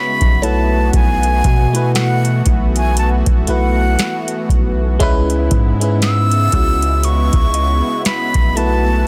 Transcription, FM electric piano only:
Already playing: G#3 C#4 E4 F#4
0.42 A3 E4 F#4 B4
1.73 A3 E4 F#4 B4
3.47 A3 E4 F#4 B4
4.99 G#3 C#4 E4 B4
5.80 G#3 C#4 E4 B4
6.52 G#3 C#4 E4 F#4
8.55 A3 E4 F#4 B4

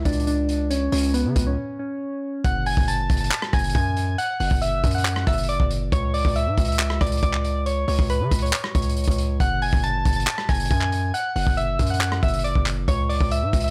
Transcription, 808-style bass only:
0.05 C#2
0.92 C#2
1.25 C#3
1.36 C#2
2.45 F#1
2.77 F#1
3.10 F#1
3.53 F#1
3.75 F#2
4.40 F#1
4.51 F#1
4.84 F#2
5.27 F#1
5.60 F#1
5.92 C#2
6.25 C#2
6.47 G#2
6.58 C#2
7.01 C#2
7.23 C#2
7.88 C#2
7.99 C#2
8.20 C#3
8.31 C#2
8.75 C#2
9.08 C#2
9.40 F#1
9.73 F#1
10.05 F#1
10.49 F#1
10.71 F#2
11.36 F#1
11.47 F#1
11.79 F#2
12.23 F#1
12.55 F#1
12.88 C#2
13.21 C#2
13.42 G#2
13.53 C#2

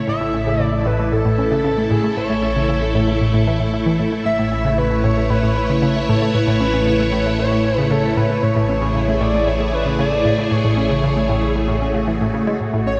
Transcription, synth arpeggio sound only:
0.08 A2
0.21 A2
0.34 C#4
0.47 C#3
0.60 C#3
0.73 A3
0.86 A2
0.99 A3
1.12 A2
1.25 A2
1.38 C#4
1.51 C#3
1.64 C#3
1.78 A3
1.91 A2
2.04 A3
2.17 A2
2.30 A2
2.43 C#4
2.56 C#3
2.69 C#3
2.82 A3
2.95 A2
3.08 A3
3.21 A2
3.34 A2
3.47 E3
3.60 A2
3.74 E4
3.86 E3
3.99 A2
4.12 A3
4.25 A2
4.39 A2
4.52 C#4
4.65 C#3
4.78 C#3
4.91 A3
5.04 A2
5.17 A3
5.30 A2
5.43 A2
5.56 C#4
5.69 C#3
5.82 C#3
5.96 A3
6.09 A2
6.22 A3
6.35 A2
6.48 A2
6.61 C#4
6.74 C#3
6.87 C#3
6.99 A3
7.12 A2
7.26 A3
7.39 A2
7.52 A2
7.65 C#4
7.78 C#3
7.91 C#3
8.04 A3
8.17 A2
8.30 A3
8.43 A2
8.56 A2
8.69 C#4
8.82 C#3
8.95 C#3
9.08 A3
9.21 A2
9.34 A3
9.47 A2
9.60 A2
9.73 C#4
9.86 C#3
9.99 C#3
10.12 A3
10.25 A2
10.38 A3
10.51 A2
10.65 A2
10.77 C#4
10.91 C#3
11.03 C#3
11.17 A3
11.29 A2
11.42 A3
11.55 A2
11.69 A2
11.82 C#4
11.94 C#3
12.08 E3
12.21 A2
12.34 C#3
12.47 G#3
12.61 A2
12.73 A2
12.86 C#4

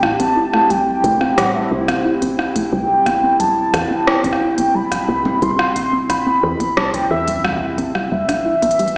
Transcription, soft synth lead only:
0.03 A5
0.70 G5
1.38 F#5
1.55 E5
1.71 C5
2.73 G5
3.40 A5
4.07 G5
4.75 B5
5.42 C6
6.09 B5
6.77 A5
6.94 G5
7.11 E5
8.12 E5

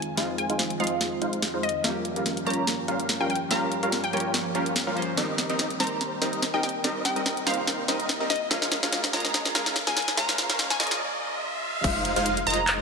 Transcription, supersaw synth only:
0.17 G#3 D#4 F4 C5 F5
0.50 G#3 D#4 F4 C5 F5
0.80 G#3 D#4 F4 C5 D#5
1.22 G#3 D#4 F4 C5 F5
1.54 G#3 D#4 F4 C5 F5
1.84 G3 C#4 F4 A#4 F5
2.16 G3 C#4 F4 A#4 F5
2.47 G3 C#4 F4 A#4 C#5
2.88 G3 C#4 F4 A#4 F5
3.20 G3 C#4 F4 A#4 F5
3.51 G3 C#4 F4 A#4 F5
3.83 G3 C#4 F4 A#4 F5
4.13 G3 C#4 F4 A#4 C#5
4.55 G3 C#4 F4 A#4 F5
4.87 G3 C#4 F4 A#4 F5
5.17 G3 C4 D#4 A#4 D#5
5.50 G3 C4 D#4 A#4 D#5
5.80 G3 C4 D#4 A#4 C5
6.22 G3 C4 D#4 A#4 D#5
6.54 G3 C4 D#4 A#4 D#5
6.84 G3 C4 D#4 A#4 D#5
7.16 G3 C4 D#4 A#4 D#5
7.47 G3 C4 D#4 A#4 C5
7.88 G3 C4 D#4 A#4 D#5
8.20 G3 C4 D#4 A#4 D#5
8.51 G#3 C#4 F4 A#4 F5
8.83 G#3 C#4 F4 A#4 F5
9.13 G#3 C#4 F4 A#4 D#5
9.55 G#3 C#4 F4 A#4 F5
9.87 G#3 C#4 F4 A#4 F5
10.17 G#3 C#4 F4 A#4 F5
10.50 G#3 C#4 F4 A#4 F5
10.80 G#3 C#4 F4 A#4 D#5
11.84 G#3 D#4 F4 C5 F5
12.16 G#3 D#4 F4 C5 F5
12.47 G#3 D#4 F4 C5 D#5

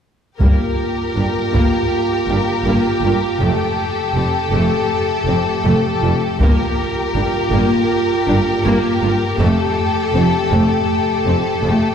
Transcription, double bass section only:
0.41 G1
1.15 G1
1.53 G1
2.27 G1
2.65 G1
3.02 G1
3.40 F1
4.15 F1
4.52 F1
5.26 F1
5.65 F1
6.02 F1
6.41 G1
7.14 G1
7.51 G1
8.28 G1
8.65 G1
9.03 G1
9.40 F1
10.14 F1
10.52 F1
11.26 F1
11.64 F1

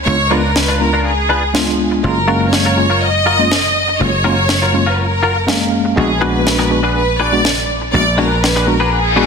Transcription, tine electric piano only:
0.06 G#3 B3 D4 F4
0.31 G#3 B3 D4 F4
0.80 G#3 B3 D4 F4
1.54 G#3 B3 D4 F4
2.03 G#3 A#3 C#4 F4
2.27 G#3 A#3 C#4 F5
2.76 G#3 A#3 C#4 F4
3.39 G#3 A#3 C#4 F4
4.00 G#3 A#3 C#4 F4
4.24 G#3 A#3 C#4 F4
4.73 G#3 A#3 C#4 F4
5.47 G#3 A#3 C#4 F5
5.96 G#3 B3 D4 F#4
6.21 G#3 B3 D4 F#4
6.70 G#3 B3 D4 F#4
7.32 G#3 B3 D4 F#4
7.93 G#3 B3 D4 F#4
8.18 G#3 B3 D4 F#4
8.67 G#3 B3 D4 F#4
9.16 G#3 B3 D4 F#4

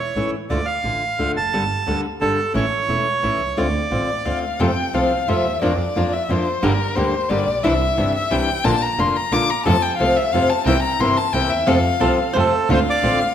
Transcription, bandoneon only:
0.00 C#5
0.50 D5
0.66 F5
1.37 A5
2.21 A4
2.56 C#5
3.57 D5
12.39 A4
12.73 C5
12.90 D5

